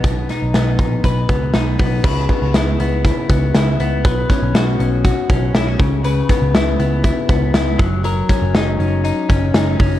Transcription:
<<
  \new Staff \with { instrumentName = "Clean electric guitar" } { \time 4/4 \key cis \dorian \tempo 4 = 120 <b, b dis' b'>8 dis'8 b8 dis'8 b'8 b8 dis'8 b8 | <cis b'>8 b8 e'8 b8 e'8 b8 e'8 b8 | <b b'>8 cis'8 fis'8 cis'8 fis'8 cis'8 e'16 fis'16 cis8 | <cis b'>8 b8 e'8 b8 e'8 b8 e'8 fis8 |
<fis ais'>8 cis'8 dis'8 cis'8 dis'8 cis'8 dis'8 cis'8 | }
  \new Staff \with { instrumentName = "Picked electric bass" } { \clef bass \time 4/4 \key cis \dorian b,,8 r16 b,,16 b,,8 ais,,8 b,,8 cis,8 b,,8 b,,8 | cis,8 r16 cis,16 cis,8 cis,8. r16 cis,8 cis,8 cis,8 | b,,8 r16 b,,16 b,,8 b,,8. r16 b,,8 b,,8 cis,8~ | cis,8 r16 cis,16 cis,8 cis,8. r16 cis,8 cis,8 fis,,8~ |
fis,,8 r16 fis,,16 fis,,8 fis,,8. r16 fis,,8 fis,,8 fis,,8 | }
  \new DrumStaff \with { instrumentName = "Drums" } \drummode { \time 4/4 <hh bd>8 <hh sn>8 <hh sn>8 <hh bd>8 <hh bd>8 <hh bd>8 <hh sn>8 <hho bd>8 | <cymc bd>8 <hh bd sn>8 <hh sn>8 hh8 <hh bd>8 <hh bd>8 <hh sn>8 hh8 | <hh bd>8 <hh bd sn>8 <hh sn>8 hh8 <hh bd>8 <hh bd>8 <hh sn>8 <hh bd>8 | hh8 <hh bd sn>8 <hh sn>8 hh8 <hh bd>8 <hh bd>8 <hh sn>8 <hh bd>8 |
hh8 <hh bd sn>8 <hh sn>8 hh8 hh8 <hh bd>8 <hh sn>8 <hho bd>8 | }
>>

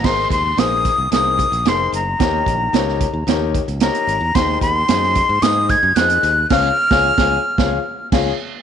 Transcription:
<<
  \new Staff \with { instrumentName = "Flute" } { \time 4/4 \key aes \mixolydian \tempo 4 = 111 c'''8 c'''8 ees'''4 ees'''4 c'''8 bes''8~ | bes''2~ bes''8 r8 bes''4 | c'''8 c'''4. ees'''8 aes'''8 ges'''4 | f'''2. r4 | }
  \new Staff \with { instrumentName = "Grand piano" } { \time 4/4 \key aes \mixolydian <ees' aes' bes' c''>8 r8 <ees' aes' bes' c''>8 r8 <ees' aes' bes' c''>8 r8 <ees' aes' bes' c''>8 r8 | <ees' g' bes' des''>8 r8 <ees' g' bes' des''>8 r8 <ees' g' bes' des''>8 r8 <ees' g' bes' des''>8 r8 | <ees' aes' c'' ees''>8 r8 <ees' aes' c'' ees''>8 r8 <ees' aes' c'' ees''>8 r8 <ees' aes' c'' ees''>8 r8 | <des f' aes' des'' f''>8 r16 <f' aes' des'' aes''>8 <f' aes' des'' aes''>8 r16 <f' aes' des'' f''>8 r8 <f' aes' des''>8 r8 | }
  \new Staff \with { instrumentName = "Grand piano" } { \clef bass \time 4/4 \key aes \mixolydian aes,4. r2 r8 | ees4. r2 r8 | ees4. r2 r8 | r1 | }
  \new Staff \with { instrumentName = "Fingered electric bass" } { \clef bass \time 4/4 \key aes \mixolydian aes,,8 ees,8 bes,,8. c,16 c,8. bes,,16 f,,8 ges,,8 | ees,8 bes,,8 des,8. ees,16 ees,8. des,8 r16 aes,,16 fes,16 | ees,8 ees,8 ges,8. aes,16 aes,8. ges,16 f,8 ees,8 | des,8 r16 des,8 des,8 r16 des,8 r8 des,8 r8 | }
  \new DrumStaff \with { instrumentName = "Drums" } \drummode { \time 4/4 <cymc bd sn>8 <hh bd>8 <hh sn>8 <hh bd>8 <hh sn>8 <hh bd>16 hh16 <hh sn>8 hh8 | <hh bd sn>8 <hh bd>8 <hh sn>16 sn16 <hh bd>8 <hh sn>8 <hh bd>16 hh16 <hh sn>16 hh16 hh8 | <hh bd sn>8 <hh bd>8 <hh sn>16 sn16 <hh bd>8 <hh sn>8 <hh bd>8 <hh sn>16 hh16 hh8 | <cymc bd sn>8. <bd sn>16 r16 <bd sn>8. <bd sn>4 <cymc bd sn>4 | }
>>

